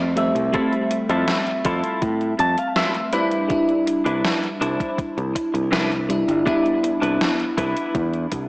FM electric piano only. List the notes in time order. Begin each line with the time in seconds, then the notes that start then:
Already playing: G3 A3 C4 E5
0.16 G3 A3 C4 E5
0.52 G3 A3 C4
3.13 G3 D4 E4
3.48 G3 D4 E4
6.09 G3 D4 E4
6.45 G3 B3 D4 E4